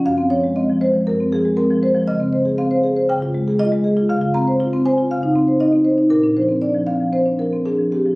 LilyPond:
\new Staff \with { instrumentName = "Marimba" } { \time 4/4 \key des \lydian \tempo 4 = 119 << { f''8 des''8 ees''8 c''8 bes'8 aes'8 bes'8 c''8 | ees''4 f''4 g''4 ees''4 | f''8 bes''4 aes''8 f''4 ees''4 | bes'8 c''8 d''8 f''8 c''8 bes'8 aes'8 g'8 | } \\ { ges,16 c'16 f16 aes16 c'16 f16 aes16 f16 ges,16 c'16 f16 aes16 c'16 f16 aes16 f16 | des16 c'16 c''16 aes'16 c'16 c''16 aes'16 c''16 des16 f'16 aes16 aes'16 f'16 aes16 aes'16 f'16 | des16 f'16 c'16 c''16 f'16 c'16 c''16 f'16 des16 ees'16 c'16 c''16 ees'16 c'16 c''16 ees'16 | bes,16 d'16 f16 c'16 d'16 f16 c'16 f16 c'16 d'16 f16 c'16 d'16 f16 c'16 f16 | } >> }